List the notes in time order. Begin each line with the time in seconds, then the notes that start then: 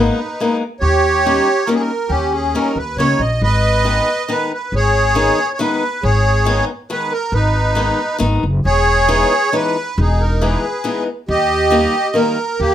Already playing: G#3 A#3 B3 D#4 B4
0.40 G#3 A#3 B3 D#4
0.80 D#2 G4 C#5
1.26 G3 A#3 C#4 D#4
1.66 G3 A#3 C#4 D#4 A#4
1.74 G#4
1.80 A#4
2.09 D#2 C#4 G4
2.34 G#4
2.55 G3 A#3 C#4 D#4 A#4
2.76 D#2 B4
2.96 C#2 G3 A#3 C#4 D#4 C#5
3.19 A#1 D#5
3.42 G#1 B4 D#5
3.84 D#3 G#3 B3 D#4
4.28 D#3 G#3 B3 D#4 B4
4.54 B4
4.72 G#1 G#4 C#5
5.15 D#3 G#3 B3 D#4
5.54 C#5
5.59 D#3 G#3 B3 D#4 B4
6.03 G#1 G#4 C#5
6.45 D#3 G#3 B3 D#4
6.90 D#3 G#3 B3 D#4 B4
7.12 A#4
7.32 G#1 D#4 B4
7.75 D#3 G#3 B3 D#4
8.19 G#1 D#3 G#3 B3 D#4
8.43 F#1
8.65 E1 G#4 C#5
9.08 E3 G#3 B3 D#4
9.52 E3 G#3 B3 D#4 B4
9.98 E1 D#4 G#4
10.21 A#4
10.41 E3 G#3 B3 D#4 G#4 B4
10.84 E3 G#3 B3 D#4
11.28 D#2 G4 D#5
11.70 D#3 G3 A#3 D#4
12.14 D#3 G3 A#3 D#4 A#4
12.59 D#2 A#3 G4